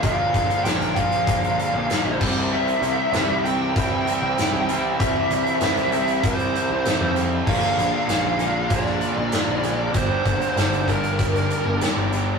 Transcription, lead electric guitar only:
X:1
M:4/4
L:1/8
Q:1/4=97
K:Cdor
V:1 name="Lead electric guitar"
f2 g f4 z | =e3 g4- g | =e4 c3 z | f4 d4 |
c3 B3 z2 |]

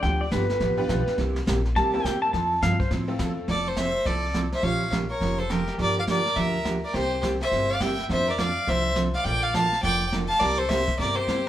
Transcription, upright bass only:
X:1
M:4/4
L:1/8
Q:"Swing" 1/4=208
K:F
V:1 name="Upright bass" clef=bass
D,,2 G,,,2 A,,,2 =B,,, z | C,,2 B,,,2 D,,2 E,,2 | F,,2 G,,2 A,,2 E,,2 | F,,,4 C,,4 |
B,,,4 F,,,4 | G,,,4 D,,4 | C,,4 G,,,4 | F,,4 C,,4 |
B,,,4 F,,,4 | C,,4 G,,,4 |]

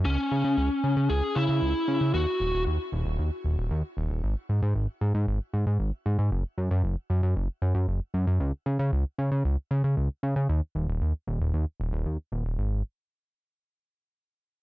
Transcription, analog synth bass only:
X:1
M:4/4
L:1/16
Q:1/4=115
K:D#phr
V:1 name="Analog synth bass" clef=bass
C,, z C, C, C,, z C, C, C,, z C, C, C,, z C, C, | D,, z D,,, D,,, D,, z D,,, D,,, D,, z D,,, D,,, D,, z D,,, D,,, | G,,, z G,, G,, G,,, z G,, G,, G,,, z G,, G,, G,,, z G,, G,, | F,,, z F,, F,, F,,, z F,, F,, F,,, z F,, F,, F,,, z F,, F,, |
C,, z C, C, C,, z C, C, C,, z C, C, C,, z C, C, | D,, z D,,, D,,, D,, z D,,, D,,, D,, z D,,, D,,, D,, z D,,, D,,, | G,,,2 z12 z2 |]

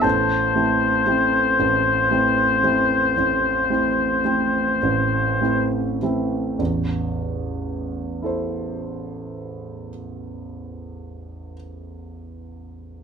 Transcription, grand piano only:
X:1
M:12/8
L:1/8
Q:3/8=37
K:Am
V:1 name="Grand piano"
[Aa]8- [Aa]3 z | z3 [EAc]8- [EAc] |]
V:2 name="Grand piano"
[A,,,A,,] [A,CE] [A,CE] [A,,,A,,] [A,CE] [A,CE] [A,,,A,,] [A,CE] [A,CE] [A,,,A,,] [A,CE] [A,CE] | [A,,,E,,]12 |]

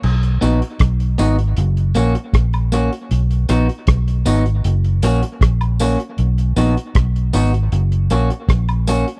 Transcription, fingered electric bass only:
X:1
M:4/4
L:1/16
Q:1/4=78
K:B
V:1 name="Fingered electric bass" clef=bass
B,,,2 A,,, z B,,,2 G,,,2 F,,,2 A,,, z A,,,3 z | B,,,2 A,,, z B,,,2 G,,,2 F,,,2 A,,, z A,,,3 z | B,,,2 A,,, z B,,,2 G,,,2 F,,,2 A,,, z A,,,3 z |]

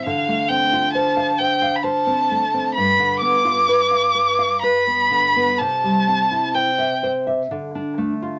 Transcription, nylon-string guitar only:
X:1
M:3/4
L:1/16
Q:1/4=64
K:Ddor
V:1 name="Nylon-string guitar"
D, A, C F c f c f c C A, C | G,, D, B, F B f B f B B, D, B, | C, G, C E c e c e D, D A, F |]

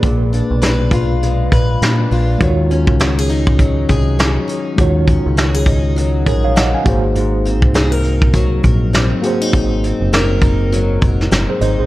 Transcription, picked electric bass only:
X:1
M:4/4
L:1/16
Q:"Swing 16ths" 1/4=101
K:Abmix
V:1 name="Picked electric bass" clef=bass
B,,,3 _C,,6- C,, B,,,2 B,,2 B,,,2 | E,,3 D,,6- D,, C,,4 z2 | E,,3 D,,6- D,, B,,,4 A,,,2- | A,,,3 C,,6- C,, B,,,4 z2 |
A,,,3 G,,,6- G,,, F,,,2 G,,, z A,,, B,,, |]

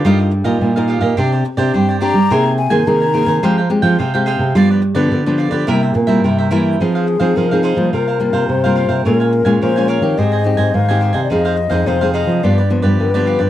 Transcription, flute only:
X:1
M:4/4
L:1/16
Q:1/4=107
K:Cm
V:1 name="Flute"
z12 g2 b2- | b2 a2 b6 z6 | z16 | [K:Fm] A4 B2 c2 B4 c4 |
B4 c2 d2 e4 f3- f/2 =d/2 | e4 c2 e2 =d4 =B4 |]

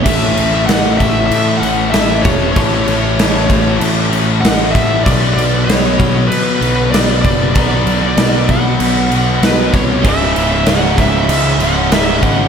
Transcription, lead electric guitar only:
X:1
M:4/4
L:1/8
Q:1/4=96
K:A
V:1 name="Lead electric guitar"
e2 f e e f e c | c4 z2 f e | d d c2 B2 d d- | d3 f3 B c |
e2 f e e f e f |]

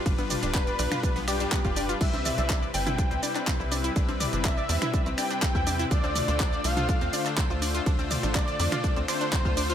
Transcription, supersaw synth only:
X:1
M:4/4
L:1/8
Q:1/4=123
K:Ddor
V:1 name="Supersaw synth"
[G,,G,DFB]3 [G,,G,DFB]2 [G,,G,DFB]3 | [C,G,CEB]3 [C,G,CEB]4- [C,G,CEB] | [C,G,CEB]3 [C,G,CEB]4- [C,G,CEB] | [D,A,DFc]3 [D,A,DFc]4- [D,A,DFc] |
[D,A,DFc]3 [D,A,DFc]2 [D,A,DFc]3 |]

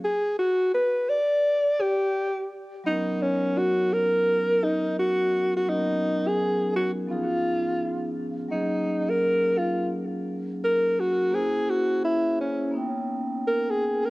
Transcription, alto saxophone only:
X:1
M:4/4
L:1/16
Q:"Swing 16ths" 1/4=85
K:F#
V:1 name="Alto saxophone"
G2 F2 B2 =d4 =G4 z2 | D2 C2 F2 A4 D2 F3 F | D3 G3 F2 E6 z2 | D3 A3 E2 z4 A2 F2 |
G2 F2 =E2 C2 z4 A G2 A |]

